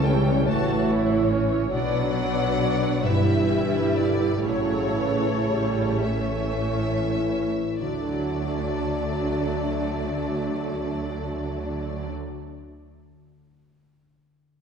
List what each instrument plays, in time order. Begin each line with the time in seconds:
Already playing: double bass section C#2, cello section C#3, harp C#3 C#4 E4, viola section E3 C#4, violin section A4 C#5
0.04 french horn section G3, harp A4, violin section G5
0.46 double bass section A1, cello section A2, french horn section A3, harp C#4, viola section F#4, violin section C#5 A5
0.88 harp E4, viola section E4
1.31 harp C#4, viola section C#4
1.73 double bass section B1, cello section B2, harp B2, french horn section F#3, viola section F#3 D4, violin section B4 D5 F#5
2.17 harp D4, violin section D5
2.60 harp F#4 B4, violin section D5
3.03 double bass section G1, cello section G2, harp G2, french horn section E3, viola section G3 E4, violin section B4 E5
3.50 harp E4
3.95 french horn section D3, harp G4 B4, violin section D5
4.43 double bass section A1, cello section A2, harp A2, french horn section C#3, viola section F#3 E4, violin section A4 C#5
4.95 viola section E3, harp E4
5.48 viola section G3, harp A4
6.02 french horn section E3, viola section A3 C#4, harp E4, violin section C#5 E5
6.59 harp G4
7.19 harp E4
7.80 double bass section D2, cello section D3, harp D3, viola section F#3, violin section A3 D4 D5, french horn section D4
7.87 harp D4
7.94 harp F#4
8.01 harp A4
8.08 harp F#5